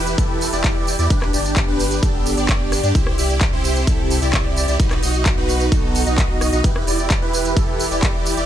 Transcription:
Already playing: E1 E3 E4 G4 B4, impact
0.07 closed hi-hat, tambourine
0.18 E1 E4 G4 A4, kick, closed hi-hat, tambourine
0.41 open hi-hat, tambourine
0.53 E1 E4 G4 D5, closed hi-hat, tambourine
0.64 kick, clap, closed hi-hat, tambourine
0.87 open hi-hat, tambourine
0.99 E2 E4 G4 D5, closed hi-hat, tambourine
1.10 G1 B3 D4 G4 B4, kick, closed hi-hat, tambourine
1.22 cross-stick, clap
1.33 G1 D4 G4 D5, open hi-hat, tambourine
1.45 closed hi-hat, tambourine
1.56 kick, clap, closed hi-hat, tambourine
1.68 G1 D4 G4 B4
1.80 open hi-hat, tambourine
1.91 closed hi-hat, tambourine
2.03 G1 D4 G4 A4, kick, closed hi-hat, tambourine
2.26 open hi-hat, tambourine
2.37 G1 D4 G4 D5, closed hi-hat, tambourine
2.49 kick, clap, closed hi-hat, tambourine
2.72 cross-stick, open hi-hat, tambourine
2.83 G2 D4 G4 D5, closed hi-hat, tambourine
2.95 C2 C3 C4 E4 C5, kick, closed hi-hat, tambourine
3.07 cross-stick
3.18 C2 E4 G4 D5, open hi-hat, tambourine
3.30 closed hi-hat, tambourine
3.41 kick, clap, closed hi-hat, tambourine
3.53 C2 E4 G4 C5
3.64 open hi-hat, tambourine
3.76 closed hi-hat, tambourine
3.87 C2 E4 G4 A4, kick, closed hi-hat, tambourine
4.10 open hi-hat, tambourine
4.22 C2 E4 G4 D5, closed hi-hat, tambourine
4.33 kick, clap, closed hi-hat, tambourine
4.57 open hi-hat, tambourine
4.68 C2 E4 G4 D5, closed hi-hat, tambourine
4.80 B1 B3 D#4 F#4 B4, kick, closed hi-hat, tambourine
4.91 cross-stick, clap, closed hi-hat
5.03 B1 D#4 F#4 D#5, open hi-hat, tambourine
5.14 closed hi-hat, tambourine
5.26 kick, clap, closed hi-hat, tambourine
5.37 B1 D#4 F#4 B4
5.49 open hi-hat, tambourine
5.60 closed hi-hat, tambourine
5.72 B1 D#4 F#4 A4, kick, closed hi-hat, tambourine
5.95 open hi-hat, tambourine
6.06 B1 D#4 F#4 D#5, closed hi-hat, tambourine
6.18 kick, clap, closed hi-hat, tambourine
6.41 cross-stick, open hi-hat, tambourine
6.53 B1 D#4 F#4 D#5, closed hi-hat, tambourine
6.64 E1 E3 E4 G4 B4, kick, closed hi-hat, tambourine
6.76 cross-stick
6.87 E1 E4 G4 D5, open hi-hat, tambourine
6.99 closed hi-hat, tambourine
7.10 kick, clap, closed hi-hat, tambourine
7.22 E1 E4 G4 B4
7.33 open hi-hat, tambourine
7.45 closed hi-hat, tambourine
7.56 E1 E4 G4 A4, kick, closed hi-hat, tambourine
7.80 open hi-hat, tambourine
7.91 E1 E4 G4 D5, closed hi-hat, tambourine
8.03 kick, clap, closed hi-hat, tambourine
8.26 open hi-hat, tambourine
8.37 E1 E4 G4 D5, closed hi-hat, tambourine

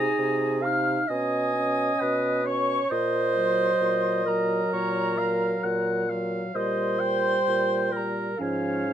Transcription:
Already playing: D#4 G#4 G#5 A#5
0.19 C3
0.62 D#4 F5 F6
1.08 B2 C#4 D#5 G#5 D#6
1.55 C#4
2.01 B2 B4
2.45 C#4 C#5 C#6
2.90 A#2 C5 D#5 C6
3.36 F#3
3.81 A#2
4.26 F#3 A#4 A#5
4.73 A#2 C#5
5.18 F#3 F5
5.64 A#2 F#5
6.09 F#3 F5
6.55 A#2 G3 C5 D#5 C6
7.00 G3 G5
7.48 A#2
7.92 G3 A#4 A#5
8.38 G#2 F3 C#4 C#5 F5
8.87 F3

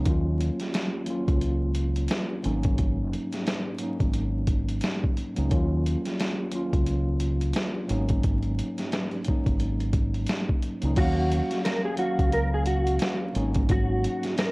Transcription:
0.04 D#2 F#3 A#3 C#4, kick, closed hi-hat
0.09 F4
0.41 closed hi-hat
0.60 snare, closed hi-hat
0.74 snare, closed hi-hat
1.05 D#2 F#3 A#3 C#4, closed hi-hat
1.10 F4
1.28 C#2, kick, closed hi-hat
1.41 closed hi-hat
1.75 closed hi-hat
1.96 closed hi-hat
2.08 snare, closed hi-hat
2.42 G#1 G#2 F#3 A#3 C#4, closed hi-hat
2.47 D#4
2.63 kick, closed hi-hat
2.78 kick, closed hi-hat
3.13 closed hi-hat
3.33 snare, closed hi-hat
3.47 snare, closed hi-hat
3.79 G#2 F#3 A#3 C#4, closed hi-hat
3.84 D#4
4.01 G#1, kick, closed hi-hat
4.14 closed hi-hat
4.47 kick, closed hi-hat
4.69 closed hi-hat
4.81 snare, closed hi-hat
5.04 kick
5.17 closed hi-hat
5.34 C#2 G#2 F#3 A#3 C#4, closed hi-hat
5.39 D#4
5.49 D#2 F#3 A#3 C#4, kick, closed hi-hat
5.54 F4
5.86 closed hi-hat
6.05 snare, closed hi-hat
6.20 snare, closed hi-hat
6.50 D#2 F#3 A#3 C#4, closed hi-hat
6.55 F4
6.73 C#2, kick, closed hi-hat
6.87 closed hi-hat
7.20 closed hi-hat
7.41 closed hi-hat
7.54 snare, closed hi-hat
7.87 G#1 G#2 F#3 A#3 C#4, closed hi-hat
7.92 D#4
8.09 kick, closed hi-hat
8.24 kick, closed hi-hat
8.43 closed hi-hat
8.59 closed hi-hat
8.78 snare, closed hi-hat
8.92 snare, closed hi-hat
9.11 closed hi-hat
9.24 G#2 F#3 A#3 C#4, kick, closed hi-hat
9.29 D#4
9.46 G#1, kick, closed hi-hat
9.60 closed hi-hat
9.80 closed hi-hat
9.93 kick, closed hi-hat
10.14 closed hi-hat
10.27 snare, closed hi-hat
10.49 kick
10.62 closed hi-hat
10.80 C#2 G#2 F#3 A#3 C#4, closed hi-hat
10.85 D#4
10.95 D#2 F#3 A#3 C#4 F#4, kick, closed hi-hat, crash
11.00 F5
11.32 closed hi-hat
11.51 snare, closed hi-hat
11.65 A#4, snare, closed hi-hat
11.85 G#4
11.96 D#2 F#3 A#3 C#4 F#4, closed hi-hat
12.01 F5
12.19 C#2, kick, closed hi-hat
12.32 A#4, closed hi-hat
12.54 G#4
12.66 F#4, closed hi-hat
12.87 closed hi-hat
12.99 snare, closed hi-hat
13.33 G#1 G#2 F#3 A#3 C#4, closed hi-hat
13.38 D#4
13.54 kick, closed hi-hat
13.69 F#4, kick, closed hi-hat
14.04 closed hi-hat
14.23 snare, closed hi-hat
14.38 A#4, snare, closed hi-hat

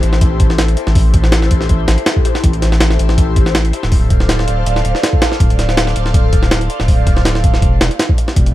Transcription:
Already playing: E4 G4 A4 C5
0.03 A1, closed hi-hat
0.13 snare
0.21 kick, closed hi-hat
0.40 kick, closed hi-hat
0.50 snare
0.58 snare, closed hi-hat
0.68 closed hi-hat
0.77 closed hi-hat
0.87 A1, snare
0.95 E4 G4 A4 C5, kick, open hi-hat
1.14 kick, closed hi-hat
1.24 snare
1.32 snare, closed hi-hat
1.42 snare
1.51 A1, kick, closed hi-hat
1.61 snare
1.69 A1, kick, closed hi-hat
1.88 A1, snare, closed hi-hat
1.98 closed hi-hat
2.06 snare, closed hi-hat
2.16 kick
2.25 closed hi-hat
2.35 snare
2.44 A1 E4 G4 A4 C5, kick, closed hi-hat
2.53 closed hi-hat
2.62 snare, closed hi-hat
2.72 snare
2.80 snare, closed hi-hat
2.90 snare
2.99 A1, closed hi-hat
3.09 snare
3.18 kick, closed hi-hat
3.36 kick, closed hi-hat
3.46 snare
3.55 snare, closed hi-hat
3.65 closed hi-hat
3.73 closed hi-hat
3.83 D1, snare
3.92 A4 C5 D5 F5, kick, open hi-hat
4.10 kick, closed hi-hat
4.20 snare
4.29 snare, closed hi-hat
4.39 snare
4.48 D1, closed hi-hat
4.66 D1, closed hi-hat
4.76 snare
4.85 D1, closed hi-hat
4.95 snare
5.03 snare, closed hi-hat
5.13 kick
5.22 snare, closed hi-hat
5.32 snare
5.40 D1 A4 C5 D5 F5, kick, closed hi-hat
5.50 closed hi-hat
5.59 snare, closed hi-hat
5.69 snare
5.77 snare, closed hi-hat
5.87 snare
5.96 D1, closed hi-hat
6.06 snare
6.14 kick, closed hi-hat
6.33 kick, closed hi-hat
6.43 snare
6.51 snare, closed hi-hat
6.61 closed hi-hat
6.70 closed hi-hat
6.80 D1, snare
6.88 A4 C5 D5 F5, kick, open hi-hat
7.07 kick, closed hi-hat
7.17 snare
7.25 snare, closed hi-hat
7.35 snare
7.44 D1, kick, closed hi-hat
7.54 snare
7.62 E1, kick, closed hi-hat
7.81 E1, snare, closed hi-hat
7.91 closed hi-hat
7.99 snare, closed hi-hat
8.09 kick
8.18 closed hi-hat
8.28 snare
8.36 E1 B3 D4 E4 G4, kick, closed hi-hat
8.46 closed hi-hat

